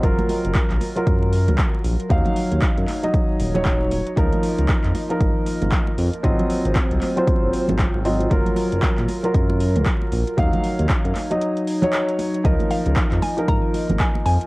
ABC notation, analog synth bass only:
X:1
M:4/4
L:1/16
Q:"Swing 16ths" 1/4=116
K:Db
V:1 name="Analog synth bass" clef=bass
G,,, z2 G,,, z B,,, z2 G,,3 D,, z2 B,,, z | E,, z2 E,, z G,, z4 E,,,4- E,,, z | D,, z2 D,, z F,, z2 A,,, z2 A,,, z2 F,, z | A,,, z2 A,,, z C,, z3 G,,, z A,,,2 A,,,3 |
G,,, z2 G,,, z B,,, z2 G,,3 D,, z2 B,,, z | E,, z2 E,, z G,, z8 z2 | D,, z2 D,, z F,, z2 A,,, z2 A,,, z2 F,, z |]